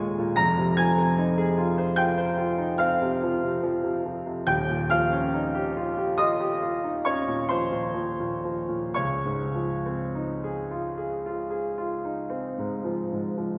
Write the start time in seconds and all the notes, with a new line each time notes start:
Already playing: D#1 D#2 A#2 G#3 C#4 F4 G#4 C#5 G#5 C#6 G#6 C#7
0.18 A#2
0.36 F1 F2 A#5 A#6
0.58 C3
0.77 F3 G#5 G#6
0.98 C4
1.18 D#4
1.38 G#4
1.58 F4
1.78 C5
1.96 F4 G5 G6
2.18 C5
2.37 F4
2.57 D#4
2.78 C4 F5 F6
3.02 C3
3.23 F3
3.43 C3
3.63 F3
3.83 C3
4.05 F3
4.26 C3
4.46 D#1 D#2 G5 G6
4.69 A#2
4.90 F3 F5 F6
5.12 C#4
5.34 D#4
5.55 G4
5.77 F4
5.97 G4
6.18 F4 D#5 D#6
6.41 G4
6.62 F4
6.84 D#4
7.05 C#4 C#5 C#6
7.28 A#2
7.49 F3 C5 C6
7.72 A#2
7.94 F3
8.20 A#2
8.45 F3
8.69 A#2
8.94 C#2 C#5 C#6
9.25 G#2
9.55 F3
9.86 C4
10.15 D#4
10.44 G#4
10.71 F4
10.98 G#4
11.26 F4
11.50 G#4
11.78 F4
12.05 D#4
12.30 C4
12.58 G#2
12.84 F3
13.12 G#2
13.38 F3